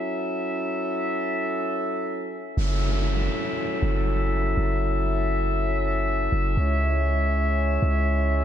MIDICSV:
0, 0, Header, 1, 4, 480
1, 0, Start_track
1, 0, Tempo, 500000
1, 552, Time_signature, 4, 2, 24, 8
1, 8107, End_track
2, 0, Start_track
2, 0, Title_t, "Brass ensemble"
2, 0, Program_c, 0, 61
2, 0, Note_on_c, 0, 54, 74
2, 0, Note_on_c, 0, 61, 69
2, 0, Note_on_c, 0, 64, 71
2, 0, Note_on_c, 0, 69, 74
2, 0, Note_on_c, 0, 76, 86
2, 2310, Note_off_c, 0, 54, 0
2, 2310, Note_off_c, 0, 61, 0
2, 2310, Note_off_c, 0, 64, 0
2, 2310, Note_off_c, 0, 69, 0
2, 2310, Note_off_c, 0, 76, 0
2, 2474, Note_on_c, 0, 54, 82
2, 2474, Note_on_c, 0, 61, 74
2, 2474, Note_on_c, 0, 64, 74
2, 2474, Note_on_c, 0, 69, 75
2, 2474, Note_on_c, 0, 76, 86
2, 6274, Note_off_c, 0, 54, 0
2, 6274, Note_off_c, 0, 61, 0
2, 6275, Note_off_c, 0, 64, 0
2, 6275, Note_off_c, 0, 69, 0
2, 6311, Note_on_c, 0, 61, 74
2, 6311, Note_on_c, 0, 64, 73
2, 6312, Note_on_c, 0, 56, 81
2, 6312, Note_on_c, 0, 73, 77
2, 8107, Note_off_c, 0, 56, 0
2, 8107, Note_off_c, 0, 61, 0
2, 8107, Note_off_c, 0, 64, 0
2, 8107, Note_off_c, 0, 73, 0
2, 8107, Note_off_c, 0, 76, 0
2, 8107, End_track
3, 0, Start_track
3, 0, Title_t, "808-style bass"
3, 0, Program_c, 1, 38
3, 2470, Note_on_c, 1, 30, 109
3, 3162, Note_off_c, 1, 30, 0
3, 3671, Note_on_c, 1, 30, 102
3, 4363, Note_off_c, 1, 30, 0
3, 4389, Note_on_c, 1, 30, 109
3, 6032, Note_off_c, 1, 30, 0
3, 6070, Note_on_c, 1, 30, 108
3, 6301, Note_off_c, 1, 30, 0
3, 6309, Note_on_c, 1, 37, 110
3, 7472, Note_off_c, 1, 37, 0
3, 7511, Note_on_c, 1, 37, 105
3, 8107, Note_off_c, 1, 37, 0
3, 8107, End_track
4, 0, Start_track
4, 0, Title_t, "Downlifter"
4, 0, Program_c, 2, 103
4, 2472, Note_on_c, 2, 60, 80
4, 6312, Note_off_c, 2, 60, 0
4, 8107, End_track
0, 0, End_of_file